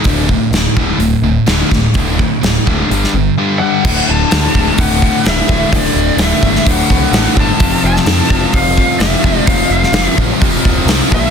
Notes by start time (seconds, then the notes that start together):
0.04 D1 D2 A2 D3, kick, open hi-hat
0.29 D2 A2, kick
0.51 D1 D2 A2, snare, open hi-hat
0.76 D1 D2 A2 D3, kick
0.98 D1 D2 A2, open hi-hat
1.22 D1 D2 A2
1.47 D1 D2 A2 D3, snare, open hi-hat
1.71 D1 D2 A2, kick, snare
1.94 D1 D2 A2 D3, kick, open hi-hat
2.19 D2 A2, kick
2.43 D1 D2 A2, snare, open hi-hat
2.66 D1 D2 A2 D3, kick
2.90 G1 G2 D3 G3, open hi-hat
3.04 snare
3.14 G1 G2 D3
3.38 G2 D3 G3
3.59 G2 D3 G3 F#5
3.84 D1 D2 A2 D3, kick, crash
4.09 D1 A5
4.29 D2 A2 D3, snare, open hi-hat
4.54 D1 D2 A2 D3, kick
4.78 D1 D2 A2 D3 F#5, kick, open hi-hat
5.02 kick
5.25 D1 D2 A2 D3 E5, snare, open hi-hat
5.48 D1 D2 A2 D3, kick
5.72 D1 D2 A2 D3 D5, kick, open hi-hat
5.94 D1
6.17 D1 D2 A2 D3, snare, open hi-hat
6.24 E5
6.43 G1 D2 A2 D3, kick
6.55 snare
6.66 D1 D2 A2 D3, kick, open hi-hat
6.70 F#5
6.90 C2, kick
7.11 A1 D2 A2 D3, snare, open hi-hat
7.35 G1 D2 A2 D3, kick
7.40 A5
7.59 F1 F2 C3 F3, kick, open hi-hat
7.83 F1 A5
7.96 snare
8.05 F2 C3 F3, snare, open hi-hat
8.29 F1 F2 C3 F3, kick
8.53 F1 F2 C3 F3 F5, kick, open hi-hat
8.77 kick
8.99 F1 F2 C3 F3 E5, snare, open hi-hat
9.23 F1 F2 C3 F3, kick
9.46 F1 F2 C3 F3 F5, kick, open hi-hat
9.69 F1
9.73 F5
9.83 snare
9.92 F1 F2 C3 F3, snare, open hi-hat
10.16 A1 F2 C3 F3, kick
10.40 F1 F2 C3 F3, kick, open hi-hat
10.65 D1, kick
10.85 C2 F2 C3 F3, snare, open hi-hat
11.10 A#1 A#2 F3 A#3, kick
11.15 E5